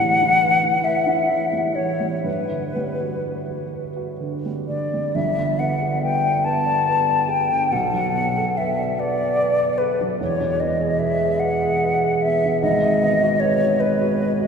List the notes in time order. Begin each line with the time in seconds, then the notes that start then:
Already playing: A2 E3 G3 F#5
0.21 E4
0.42 B4
0.63 E4
0.84 B4 E5
1.07 E4
1.30 E3
1.53 G3
1.75 E3 C#5
2.00 G3
2.24 G2 B4
2.51 D3
2.76 G3
3.01 F#4
3.24 B4
3.49 F#4
3.73 B4
3.97 F#4
4.20 D3
4.46 G3
4.68 D3 D5
4.94 G3
5.15 G1 G2 E5
5.38 D3
5.59 B3 F#5
5.81 G4
6.02 B4 G5
6.22 D5
6.44 B4 A5
6.65 D5
6.87 B4
7.07 D5
7.28 G4 G5
7.50 D3
7.72 B1 B2 F#5
7.94 F#3
8.15 B3
8.38 A4
8.57 B4 E5
8.77 D5
8.99 B4 D5
9.19 D5
9.40 B4
9.60 D5
9.78 A4 B4
10.01 F#3
10.20 E1 E2 C#5
10.41 B2
10.60 B3 D#5
10.80 G#4
10.99 B4 E5
11.20 G#4
11.40 B4 F#5
11.62 G#4
11.83 B4
12.04 G#4
12.22 B3 E5
12.45 B2
12.62 G#1 G#2 D#5
12.83 D#3
13.02 B3
13.23 F#4
13.40 B4 C#5
13.62 F#4
13.80 B4
14.01 F#4
14.21 B4
14.40 F#4